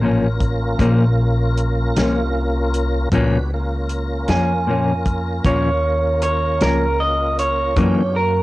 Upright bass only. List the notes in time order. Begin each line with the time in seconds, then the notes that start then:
Already playing: A1
0.79 A#1
1.97 C2
3.12 C#2
4.28 F2
5.45 D#2
6.61 C#2
7.76 F#2